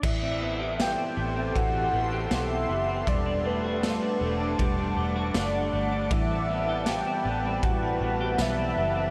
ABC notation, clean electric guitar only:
X:1
M:4/4
L:1/16
Q:1/4=79
K:Ador
V:1 name="Clean electric guitar"
E, C B, G B, C B, C E, C B, G B, C B, C | G, D A, F A, D A, D G, D A, F A, D A, D | E, C B, G B, C B, C E, C B, G B, C B, C |]